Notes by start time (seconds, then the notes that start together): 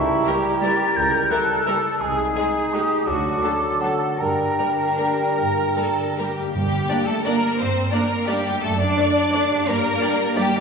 Already playing: C#2 C#3 G3 E4 A#4 C#6
0.09 C#4
0.25 G3 E4 G4 A#4
0.45 E4
0.62 G3 E4 A#4 A6
0.81 E4
0.96 C#2 C#3 A#4 G6
1.14 C#4
1.31 G3 E4 A4 A#4 F#6
1.50 E4
1.59 F#6
1.67 G3 E4 A#4 E6
1.86 E4
2.01 C2 C3 G#3 D#4 G#4 G#5
2.19 C4
2.36 G#3 D#4 G#4
2.56 D#4
2.73 G#3 D#4 G4 G#4 D#6
2.91 D#4
3.07 D2 D3 F#3 D4 F#4 A4 D6
3.25 A3
3.41 F#3 D4 A4
3.63 F#4
3.80 F#3 D4 A4 F#5
4.01 F#4
4.19 G2 G3 D4 A#4 G5
4.39 D3
4.58 G3 A#3 D4 A#4
4.80 D4
4.98 G3 G4 A#4
5.19 D4
5.37 G2 A#4
5.57 D3
5.76 G3 A#3 A4 A#4
5.98 D4
6.18 G3 G4 A#4
6.38 G2 D4
6.43 A#3
6.47 D4
6.52 G2 G3 G4
6.89 A#3 D4 D5
7.06 A3 A4
7.24 A#3 D4 A#4 D5
7.59 G2 C4 C5
7.91 A#3 D4 A#4 D5
8.27 G3 A#3 D4 G4 D5
8.46 F#2
8.50 A3
8.55 D4
8.59 F#2 A4
8.63 A3
8.81 D4 D5
8.98 A3 D4 D5
9.32 A3 D4 D5
9.50 G2
9.54 A#3
9.59 D4
9.64 G2 G4
9.68 A#3 A#4
10.00 G3 A#3 D4 G4 D5
10.35 G3 A#3 D4 G4 D5
10.50 D#3
10.55 A#3